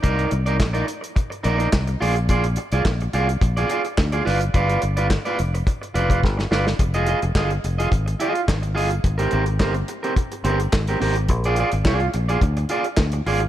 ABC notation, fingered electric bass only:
X:1
M:4/4
L:1/16
Q:1/4=107
K:Fdor
V:1 name="Fingered electric bass" clef=bass
C,,2 C,,2 B,,,2 z4 B,,,2 C,,2 B,,,2- | B,,,3 C,, B,,,2 C,,2 B,,,2 z2 D,,2 G,,,2 | G,,,2 G,,,3 z F,,,2 z2 F,,,2 G,,,2 G,,,2 | F,,,3 F,,, G,,,2 F,,,2 A,,,2 z2 A,,,2 G,,,2 |
A,,,2 A,,,2 G,,,2 z4 G,,,2 A,,,2 A,,,2 | B,,,3 A,,, C,,2 B,,,2 D,,2 z2 D,,2 A,,,2 |]